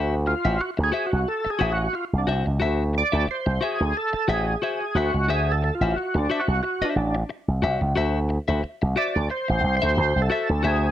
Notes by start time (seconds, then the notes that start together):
Already playing: D2 F#4 C5 E5
0.26 F4, muted clean electric guitar stroke
0.45 A1 F#4 C5 E5
0.59 F#4, muted clean electric guitar stroke
0.77 D2, muted clean electric guitar stroke
0.84 G#4
0.92 F#4 C5 E5
1.07 F#4
1.12 C2, muted clean electric guitar stroke
1.28 A4
1.45 muted clean electric guitar stroke, muted slap bass stroke
1.50 G#4
1.59 A1 F#4 C5 E5
1.72 F#4
1.78 muted clean electric guitar stroke
1.93 F4, muted clean electric guitar stroke
2.13 C2
2.18 D4
2.27 C2 F#4 C5 E5
2.46 C#2, muted clean electric guitar stroke
2.60 D2 F#4 C5 E5
2.93 muted clean electric guitar stroke
2.98 D5
3.12 D2 F#4 C5 E5
3.27 C5, muted clean electric guitar stroke, muted slap bass stroke
3.46 C2, muted clean electric guitar stroke
3.61 F#4 G#4 C5 E5
3.80 D2, muted clean electric guitar stroke
3.97 A4
4.13 muted clean electric guitar stroke, muted slap bass stroke
4.28 A1 F#4 G#4 C5 E5
4.47 muted clean electric guitar stroke
4.62 F#4 C5 E5
4.81 muted clean electric guitar stroke
4.95 D2 F#4 C5 E5
5.14 C#2, muted clean electric guitar stroke
5.28 D2 F#4 G#4 C5 E5
5.52 A4
5.63 muted clean electric guitar stroke
5.75 F4
5.81 A1 F#4 C5 E5
5.96 F#4, muted clean electric guitar stroke
6.14 D2 D4, muted clean electric guitar stroke
6.30 F#4 C5 E5
6.40 F#4
6.48 C2, muted clean electric guitar stroke
6.63 F#4, muted clean electric guitar stroke
6.81 D4 F#4 C5 E5, muted slap bass stroke
6.96 A1, muted clean electric guitar stroke
7.15 muted clean electric guitar stroke
7.29 muted clean electric guitar stroke
7.48 C2
7.62 C2 F#4 C5 E5
7.81 C#2, muted clean electric guitar stroke
7.96 D2 F#4 C5 E5
8.29 muted clean electric guitar stroke
8.48 D2 F#4 C5 E5
8.63 muted clean electric guitar stroke, muted slap bass stroke
8.82 C2, muted clean electric guitar stroke
8.96 F#4 C5 D5 E5
9.15 D2, muted clean electric guitar stroke
9.30 C5, muted clean electric guitar stroke
9.48 A1, muted clean electric guitar stroke
9.64 C2
9.77 C5
9.82 D2 F#4 C5 E5
9.97 D2, muted clean electric guitar stroke
10.16 C2
10.22 A4
10.30 F#4 C5 E5
10.49 D2, muted clean electric guitar stroke
10.63 D2 F#4 C5 E5
10.67 G#4